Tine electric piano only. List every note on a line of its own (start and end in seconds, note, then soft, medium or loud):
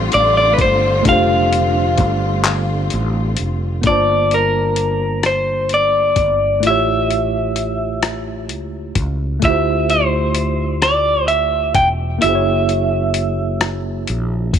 0.00 1.00 A3 medium
0.00 1.01 D4 medium
0.00 1.03 F4 medium
0.00 1.04 G4 medium
0.00 1.05 C5 medium
1.02 3.79 A3 medium
1.02 3.80 D4 medium
1.07 3.81 F4 medium
1.07 3.83 G4 medium
1.12 3.84 C5 medium
3.81 6.58 A#3 medium
3.81 6.59 D4 medium
3.87 6.61 F4 soft
3.87 6.62 A5 medium
3.92 6.63 C5 medium
6.60 9.37 A3 medium
6.60 9.38 E4 medium
6.65 9.40 F4 medium
6.65 9.41 G4 medium
6.70 9.42 C#5 medium
9.40 12.16 A3 medium
9.40 12.18 E4 medium
9.45 12.19 F4 medium
9.45 12.20 G4 medium
9.50 12.21 C5 medium
12.18 14.59 A#3 medium
12.18 14.59 E4 medium
12.24 14.59 F#4 medium
12.24 14.59 G#4 medium
12.29 12.32 C5 medium
12.35 14.59 C#5 medium